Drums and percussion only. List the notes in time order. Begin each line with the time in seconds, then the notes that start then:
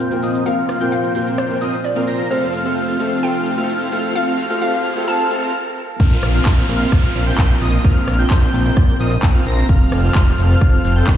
0.11 cabasa
0.23 open hi-hat, cabasa
0.34 cabasa
0.46 cabasa
0.69 cross-stick, open hi-hat, cabasa
0.81 cabasa
0.92 cabasa
1.04 cabasa
1.15 open hi-hat, cabasa
1.27 cabasa
1.38 cross-stick, cabasa
1.50 cabasa
1.61 open hi-hat, cabasa
1.73 cabasa
1.84 open hi-hat, cabasa
1.96 cabasa
2.07 open hi-hat, cabasa
2.19 cabasa
2.30 cabasa
2.54 open hi-hat, cabasa
2.65 cabasa
2.77 cabasa
2.88 cabasa
3.00 open hi-hat, cabasa
3.11 cabasa
3.23 cabasa
3.34 cabasa
3.46 open hi-hat, cabasa
3.58 cabasa
3.69 cabasa
3.81 cabasa
3.92 open hi-hat, cabasa
4.04 cabasa
4.15 cabasa
4.38 open hi-hat, cabasa
4.50 cabasa
4.62 cabasa
4.73 cabasa
4.84 open hi-hat, cabasa
4.96 cabasa
5.08 cabasa
5.19 cabasa
5.31 open hi-hat, cabasa
5.42 cabasa
6.00 kick, crash, cabasa
6.23 cross-stick, open hi-hat, cabasa
6.34 cabasa
6.46 kick, clap, cabasa
6.58 cabasa
6.69 open hi-hat, cabasa
6.81 cabasa
6.92 kick, cross-stick, cabasa
7.04 cabasa
7.15 open hi-hat, cabasa
7.27 cabasa
7.38 kick, clap, cabasa
7.50 cabasa
7.61 open hi-hat, cabasa
7.73 cabasa
7.85 kick, cabasa
8.08 cross-stick, open hi-hat, cabasa
8.19 cabasa
8.30 kick, clap, cabasa
8.42 cabasa
8.54 open hi-hat, cabasa
8.65 cabasa
8.77 kick, cross-stick, cabasa
8.88 cabasa
9.00 open hi-hat, cabasa
9.11 cabasa
9.23 kick, clap, cabasa
9.35 cabasa
9.46 open hi-hat, cabasa
9.58 cabasa
9.69 kick, cabasa
9.92 cross-stick, open hi-hat, cabasa
10.04 cabasa
10.15 kick, clap, cabasa
10.27 cabasa
10.38 open hi-hat, cabasa
10.50 cabasa
10.61 kick, cross-stick, cabasa
10.73 cabasa
10.84 open hi-hat, cabasa
10.96 cabasa
11.07 kick, clap, cabasa